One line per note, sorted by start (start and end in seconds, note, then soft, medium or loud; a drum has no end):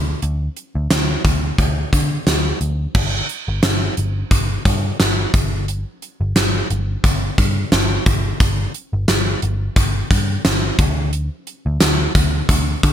0.00 0.13 D2 medium
0.22 0.47 D2 loud
0.22 closed hi-hat medium
0.57 closed hi-hat medium
0.75 0.86 D2 medium
0.91 1.15 D2 medium
0.91 snare loud
0.91 closed hi-hat medium
1.25 1.49 D2 medium
1.25 kick medium
1.25 closed hi-hat medium
1.58 1.83 D2 medium
1.58 kick medium
1.58 closed hi-hat medium
1.93 2.17 D3 medium
1.93 kick medium
1.93 closed hi-hat medium
2.27 2.51 D2 medium
2.27 snare medium
2.27 closed hi-hat medium
2.61 2.85 D2 medium
2.61 closed hi-hat medium
2.95 3.19 G1 loud
2.95 kick loud
2.95 crash medium
3.29 closed hi-hat medium
3.48 3.59 G1 medium
3.63 3.88 G1 medium
3.63 snare loud
3.63 closed hi-hat loud
3.97 4.22 G1 medium
3.97 closed hi-hat medium
4.31 4.56 G1 loud
4.31 kick medium
4.31 closed hi-hat medium
4.65 4.90 G2 medium
4.65 kick medium
4.65 closed hi-hat medium
5.00 5.25 G1 medium
5.00 snare medium
5.00 closed hi-hat medium
5.34 5.83 G1 medium
5.34 kick loud
5.34 closed hi-hat medium
5.68 closed hi-hat medium
6.02 closed hi-hat medium
6.21 6.32 G1 medium
6.36 6.61 G1 loud
6.36 snare loud
6.36 closed hi-hat loud
6.70 6.95 G1 loud
6.70 closed hi-hat medium
7.04 7.29 G1 medium
7.04 kick medium
7.04 closed hi-hat medium
7.38 7.63 G2 medium
7.38 kick medium
7.38 closed hi-hat medium
7.72 7.97 G1 loud
7.72 snare loud
7.72 closed hi-hat medium
8.06 8.31 G1 medium
8.06 kick medium
8.06 closed hi-hat medium
8.40 8.65 G1 loud
8.40 kick loud
8.40 closed hi-hat medium
8.74 closed hi-hat medium
8.93 9.04 G1 medium
9.08 9.33 G1 loud
9.08 snare loud
9.08 closed hi-hat loud
9.42 9.67 G1 medium
9.42 closed hi-hat medium
9.76 10.01 G1 loud
9.76 kick medium
9.76 closed hi-hat medium
10.11 10.35 G2 medium
10.11 kick medium
10.11 closed hi-hat medium
10.45 10.70 G1 loud
10.45 snare loud
10.45 closed hi-hat medium
10.79 11.28 D2 medium
10.79 kick loud
10.79 closed hi-hat medium
11.13 closed hi-hat medium
11.47 closed hi-hat medium
11.66 11.77 D2 medium
11.80 12.06 D2 loud
11.80 snare loud
11.80 closed hi-hat loud
11.80 tambourine medium
12.15 12.40 D2 loud
12.15 kick medium
12.15 closed hi-hat medium
12.49 12.74 D2 loud
12.49 kick medium
12.49 closed hi-hat medium
12.83 12.93 D3 medium
12.83 kick medium
12.83 closed hi-hat medium